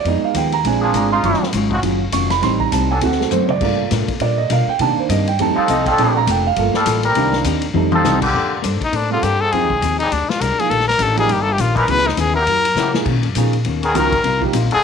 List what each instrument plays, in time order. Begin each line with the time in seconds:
0.04 upright bass F2, hollow-body jazz guitar F3 B3 D#4, grand piano G#3 B3 D#4 D#5, kick, ride
0.09 hollow-body jazz guitar G#4
0.24 grand piano F5
0.34 upright bass D#2, hollow-body jazz guitar F3 B3 D#4 G#4, grand piano G5, kick, hi-hat pedal, ride
0.52 grand piano A#5, ride
0.64 upright bass A#1, hollow-body jazz guitar A#2 G#3 D4, grand piano G#3 C4 D4 G#5, kick, ride
0.68 hollow-body jazz guitar F4
0.80 trombone section F3 A#3 D4 G#4
0.84 grand piano A5
0.93 upright bass G#1, hollow-body jazz guitar A#2 G#3 D4 F4, grand piano A#5, kick, hi-hat pedal, ride
1.11 trombone section D#4 F4, grand piano C6
1.23 upright bass F#1, hollow-body jazz guitar D#3 F#3 C#4 F4, grand piano F#3 C#4 F4 C#6, kick, ride
1.34 snare
1.40 muted upright bass stroke, snare
1.53 upright bass G#1, hollow-body jazz guitar D#3 F#3 C#4 F4, kick, hi-hat pedal, ride
1.70 trombone section F3 C#4 D#4 F#4, kick
1.83 upright bass F#1, hollow-body jazz guitar D#3 F#3 C#4 F4, grand piano F#3 C#4 F4, kick, ride
2.12 upright bass F1, hollow-body jazz guitar D#3 F#3 C#4 F4, grand piano C#6, kick, hi-hat pedal, ride
2.30 grand piano B5, snare, ride
2.41 upright bass A1, hollow-body jazz guitar A2 G3 C4, grand piano G3 C4 D#4 C6, kick, snare, ride
2.46 hollow-body jazz guitar D#4
2.60 grand piano A#5, kick
2.72 upright bass C2, hollow-body jazz guitar A2 G3 C4 D#4, grand piano A5, kick, hi-hat pedal, ride
2.91 trombone section F#3 C4 D4 A4, grand piano G#5
3.01 upright bass D2, hollow-body jazz guitar D3 A3 C4 F#4, grand piano A3 C4 F#4 F#5, kick, ride
3.12 snare
3.20 grand piano A4, snare
3.31 upright bass F#2, hollow-body jazz guitar D3 A3 C4 F#4, grand piano C5, floor tom, hi-hat pedal
3.46 grand piano C#5, mid tom
3.50 grand piano D5
3.61 upright bass G2, hollow-body jazz guitar G3 D4 F4 A#4, grand piano A3 A#3 F4, kick, crash
3.91 upright bass A2, hollow-body jazz guitar G3 D4 F4 A#4, kick, snare, hi-hat pedal, ride
4.08 muted upright bass stroke, kick, ride
4.20 upright bass A#2, hollow-body jazz guitar G3 D4 F4 A#4, grand piano D5, kick, ride
4.38 grand piano D#5
4.50 upright bass B2, hollow-body jazz guitar G3 D4 F4 A#4, grand piano F5, kick, hi-hat pedal, ride
4.67 grand piano G5, muted upright bass stroke
4.79 upright bass C3, hollow-body jazz guitar C3 A#3, grand piano D#3 A#3 D4 A5, kick, ride
4.84 hollow-body jazz guitar D#4 G4
4.97 grand piano C5, muted upright bass stroke
5.09 upright bass G2, hollow-body jazz guitar C3 A#3 D#4 G4, grand piano D#5, kick, hi-hat pedal, ride
5.27 grand piano G5, ride
5.39 upright bass F2, hollow-body jazz guitar F3 C4 D#4 A4, grand piano G3 A3 D#4 A5, kick, ride
5.54 trombone section F3 C4 D#4 A4, grand piano F5, muted upright bass stroke
5.68 upright bass C2, hollow-body jazz guitar F3 C4 D#4 A4, grand piano D#5, kick, hi-hat pedal, ride
5.86 trombone section F3 D4 A4, grand piano G5, kick, ride
5.98 upright bass A#1, grand piano A3 C4 D4 A5, hollow-body jazz guitar A#3 D4 F4 A4, kick, ride
6.17 grand piano A#5
6.27 upright bass F1, hollow-body jazz guitar A#3 D4 F4 A4, grand piano G5, kick, hi-hat pedal, ride
6.47 grand piano F5
6.56 upright bass G1, hollow-body jazz guitar G3 A#3 F4 A4, grand piano A3 A#3 F4, kick, ride
6.74 trombone section G3 F4 A4, muted upright bass stroke, snare
6.86 upright bass A1, hollow-body jazz guitar G3 A#3 F4 A4, kick, hi-hat pedal, ride
7.03 trombone section G3 C4 A#4, ride
7.15 upright bass C2, hollow-body jazz guitar C3 A#3 D#4 G4, grand piano D#3 A#3 D4, kick, ride
7.33 snare
7.44 upright bass D#2, hollow-body jazz guitar C3 A#3 D#4 G4, kick, hi-hat pedal, ride
7.62 ride
7.74 upright bass F2, hollow-body jazz guitar F3 C4 D#4 A4, grand piano G3 A3 D#4, high tom
7.92 trombone section F3 C4 D#4 A4, high tom
8.04 upright bass C2, hollow-body jazz guitar F3 C4 D#4 A4, snare, hi-hat pedal
8.21 trombone section D3 A#3 C4 G4, kick, crash
8.34 upright bass F2, hollow-body jazz guitar A#3 D4 A4 C5, kick
8.62 upright bass G2, hollow-body jazz guitar A#3 D4 A4 C5, kick, hi-hat pedal, ride
8.81 trumpet D#4, muted upright bass stroke, kick, ride
8.92 upright bass A2, hollow-body jazz guitar A#3 D4 A4 C5, trumpet D4, kick, ride
9.10 trombone section D3 A#3 C4 A4, grand piano G3 C4 F4 A4, trumpet F4
9.23 upright bass G2, hollow-body jazz guitar A#3 D4 A4 C5, trumpet G4, kick, hi-hat pedal, ride
9.41 trombone section F3 C4 D#4 G#4, trumpet A4
9.52 upright bass F2, grand piano F3 A#3 D#4 G#4, hollow-body jazz guitar F3 C4 D#4, trumpet G#4, kick, ride
9.56 hollow-body jazz guitar G#4
9.63 upright bass D#2
9.70 upright bass C2, kick
9.81 upright bass D#2, hollow-body jazz guitar F3 C4 D#4 G#4, kick, hi-hat pedal, ride
9.99 trombone section G3 C4 D4 G#4, trumpet D#4, ride
10.11 upright bass D2, hollow-body jazz guitar A#2 G#3 D4 G4, trumpet D4, kick, ride
10.29 trumpet F4, snare
10.40 upright bass C2, hollow-body jazz guitar A#2 G#3 D4 G4, trumpet A#4, kick, hi-hat pedal, ride
10.59 grand piano F3 A#3 D#4 F4, trumpet G#4, ride
10.69 upright bass A#1, hollow-body jazz guitar D#3 A#3 D4 G4, trumpet A4, kick, ride
10.80 snare
10.88 trumpet A#4, snare
10.99 upright bass A1, hollow-body jazz guitar D#3 A#3 D4 G4, trumpet A4, kick, hi-hat pedal, ride
11.16 grand piano F3 A#3 D#4 G4, trombone section G3 D4 D#4 A#4, trumpet G#4, ride
11.27 upright bass G1, hollow-body jazz guitar D#3 A#3 D4 G4, kick, ride
11.32 trumpet G4
11.42 trumpet A4
11.52 trumpet G4
11.58 upright bass A#1, hollow-body jazz guitar D#3 A#3 D4 G4, trumpet F4, kick, hi-hat pedal, ride
11.74 trombone section E3 C#4 D#4 B4, trumpet A#4, kick, ride
11.88 upright bass C#2, hollow-body jazz guitar C#3 E3 B3 D#4, grand piano F#3 B3 E4 G#4, trumpet B4, kick, ride
11.98 snare
12.07 trumpet D#4, snare
12.16 upright bass D#2, hollow-body jazz guitar C#3 E3 B3 D#4, trumpet G#4, kick, hi-hat pedal, ride
12.34 trombone section F#3 A#3 E4 G4, trumpet A#4
12.46 upright bass F#2, hollow-body jazz guitar F#3 A#3 E4, kick, ride
12.51 hollow-body jazz guitar G4
12.65 ride
12.75 upright bass C#3, hollow-body jazz guitar F#3 A#3 E4 G4, trombone section F#3 A#3 E4 G4, snare, hi-hat pedal
12.94 grand piano F3 A#3 D#4 G#4, snare
13.06 upright bass B2, hollow-body jazz guitar B2 D#3 A#3, kick, crash
13.10 hollow-body jazz guitar C#4
13.16 upright bass A#2
13.23 upright bass F#2, ride
13.35 upright bass A#2, hollow-body jazz guitar B2 D#3 A#3 C#4, grand piano F3 A#3 D#4 G#4, kick, hi-hat pedal, ride
13.53 ride
13.65 upright bass D#2, hollow-body jazz guitar B2 D#3 A#3 C#4, kick, ride
13.82 trombone section D#3 B3 C#4 A#4, trumpet G#4, ride
13.94 upright bass C#2, hollow-body jazz guitar B2 D#3 A#3 C#4, grand piano F3 A#3 D#4 F#4, trumpet A#4, kick, hi-hat pedal, ride
14.12 kick, ride
14.24 upright bass C2, hollow-body jazz guitar C3 A#3 D#4 F4, kick, ride
14.41 grand piano F3 A#3 D#4 G4, kick
14.53 upright bass A#1, hollow-body jazz guitar C3 A#3 D#4 F4, hi-hat pedal, ride
14.64 upright bass G1
14.71 upright bass D#1, trombone section F#3 D#4 F4 A4, trumpet G#4, ride